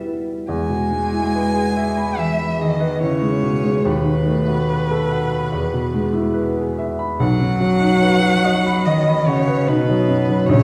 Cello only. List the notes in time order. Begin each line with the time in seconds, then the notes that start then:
Already playing: G3
0.48 G#3
2.18 E3
2.62 D#3
3.03 C#3
3.86 B2
7.20 F#3
8.86 D#3
9.27 C#3
9.68 B2
10.48 C#3